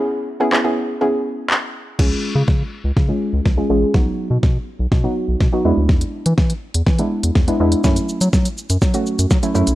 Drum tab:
CC |----------------|x---------------|----------------|----------------|
HH |----------------|----------------|----------------|-x-x-x-x-x-x-x-x|
SH |----------------|----------------|----------------|----------------|
CP |----x-------x---|----------------|----------------|----------------|
SD |----------------|o---o---o---o---|o---o---o---o---|o---o---o---o---|
BD |----------------|o---o---o---o---|o---o---o---o---|o---o---o---o---|

CC |----------------|
HH |-x-x-x-x-x-x-x-x|
SH |xxxxxxxxxxxxxxxx|
CP |----------------|
SD |o---o---o---o---|
BD |o---o---o---o---|